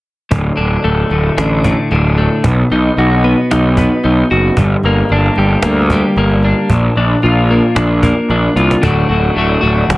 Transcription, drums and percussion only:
0.31 cajon bass loud
0.58 cajon slap soft
0.84 cajon slap soft
1.11 cajon slap soft
1.38 cajon slap medium
1.64 cajon bass medium
1.91 cajon slap soft
2.18 cajon slap soft
2.44 cajon bass medium
2.71 cajon slap soft
2.98 cajon slap soft
3.24 cajon slap soft
3.51 cajon slap medium
3.77 cajon bass medium
4.04 cajon slap soft
4.30 cajon slap soft
4.57 cajon bass medium
4.83 cajon slap soft
5.09 cajon slap soft
5.36 cajon slap soft
5.63 cajon slap loud
5.90 cajon bass medium
6.16 cajon slap soft
6.31 cajon slap soft
6.43 cajon slap soft
6.70 cajon bass medium
6.96 cajon slap soft
7.22 cajon slap soft
7.50 cajon slap soft
7.76 cajon slap loud
8.03 cajon bass medium
8.30 cajon slap soft
8.57 cajon slap soft
8.71 cajon slap medium
8.83 cajon bass medium
9.90 cajon slap medium

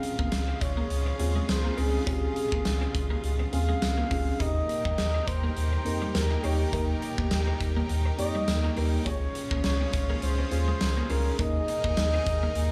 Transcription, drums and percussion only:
0.03 closed hi-hat medium
0.19 kick loud
0.32 snare loud
0.32 closed hi-hat medium
0.32 tambourine medium
0.61 kick loud
0.61 closed hi-hat medium
0.90 closed hi-hat medium
1.19 closed hi-hat medium
1.49 snare loud
1.49 closed hi-hat medium
1.49 tambourine medium
1.78 open hi-hat medium
2.07 kick loud
2.07 closed hi-hat medium
2.36 closed hi-hat medium
2.52 kick loud
2.65 snare loud
2.65 closed hi-hat medium
2.65 tambourine medium
2.95 kick loud
2.95 closed hi-hat medium
3.24 closed hi-hat medium
3.53 closed hi-hat medium
3.82 snare loud
3.82 closed hi-hat medium
3.82 tambourine medium
4.11 kick medium
4.11 open hi-hat medium
4.40 kick loud
4.40 closed hi-hat medium
4.69 closed hi-hat medium
4.85 kick loud
4.98 snare loud
4.98 closed hi-hat medium
4.98 tambourine medium
5.27 kick loud
5.27 closed hi-hat medium
5.57 closed hi-hat medium
5.86 closed hi-hat medium
6.15 snare loud
6.15 closed hi-hat medium
6.15 tambourine medium
6.44 open hi-hat medium
6.73 kick loud
6.73 closed hi-hat medium
7.02 closed hi-hat medium
7.18 kick loud
7.31 snare loud
7.31 closed hi-hat medium
7.31 tambourine medium
7.60 kick medium
7.60 closed hi-hat medium
7.89 closed hi-hat medium
8.19 closed hi-hat medium
8.48 snare loud
8.48 closed hi-hat medium
8.48 tambourine medium
8.77 open hi-hat medium
9.06 kick loud
9.06 closed hi-hat medium
9.35 closed hi-hat medium
9.51 kick loud
9.64 snare loud
9.64 closed hi-hat medium
9.64 tambourine medium
9.93 kick medium
9.93 closed hi-hat medium
10.22 closed hi-hat medium
10.51 closed hi-hat medium
10.81 snare loud
10.81 closed hi-hat medium
10.81 tambourine medium
11.10 open hi-hat medium
11.39 kick loud
11.39 closed hi-hat medium
11.68 closed hi-hat medium
11.84 kick loud
11.97 snare loud
11.97 closed hi-hat medium
11.97 tambourine medium
12.26 kick loud
12.26 closed hi-hat medium
12.55 closed hi-hat medium

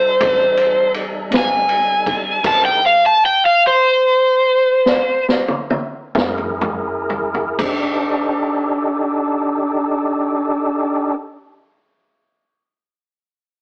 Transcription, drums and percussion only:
0.21 kick loud
0.21 ride medium
0.57 ride medium
0.94 ride medium
1.32 snare loud
1.32 ride medium
1.69 ride medium
2.06 kick medium
2.06 ride medium
2.44 kick loud
2.44 crash medium
2.44 ride medium
4.86 snare medium
5.29 snare medium
5.48 high tom medium
5.70 high tom medium
6.15 kick medium
6.15 snare medium
6.15 mid tom medium
6.38 mid tom medium
6.61 mid tom loud
7.10 floor tom medium
7.34 floor tom medium
7.59 kick medium
7.59 crash medium

